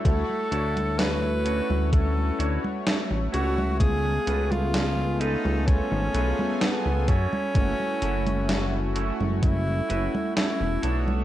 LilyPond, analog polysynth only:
\new Staff \with { instrumentName = "Analog polysynth" } { \time 4/4 \key fis \phrygian \tempo 4 = 64 <a e' fis' cis''>4. <a cis' e' fis'>16 r4. r16 <a e' fis' cis''>8 | <a b eis' gis'>16 r4 r16 <a b eis' a'>4 <a b eis' gis'>16 <a b eis' gis''>8. r8 | <a cis' e' fis'>4. <a cis' e' fis'>16 r4. r16 <a d' fis' cis''>8 | }